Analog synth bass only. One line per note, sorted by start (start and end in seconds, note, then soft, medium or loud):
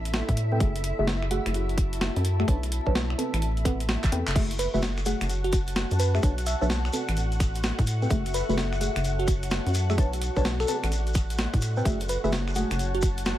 0.00 0.22 A1 medium
0.29 0.62 A2 medium
0.60 0.92 F#1 medium
0.99 1.39 F#1 medium
1.46 2.10 F#1 loud
2.16 2.44 F#2 medium
2.48 2.80 B1 loud
2.86 3.15 B1 loud
3.33 3.97 A1 loud
4.04 4.10 A1 medium
4.12 4.23 E2 loud
4.27 4.67 F#1 loud
4.74 5.14 F#1 medium
5.21 5.85 F#1 medium
5.91 6.19 F#2 medium
6.23 6.55 B1 loud
6.62 6.90 B1 loud
7.08 7.72 A1 loud
7.79 8.07 A2 medium
8.11 8.42 F#1 loud
8.49 8.89 F#1 loud
8.96 9.60 F#1 loud
9.66 9.99 F#2 medium
9.98 10.30 B1 medium
10.36 10.65 B1 loud
10.83 11.47 A1 medium
11.54 11.82 A2 medium
11.85 12.17 F#1 medium
12.24 12.64 F#1 loud
12.71 13.34 F#1 medium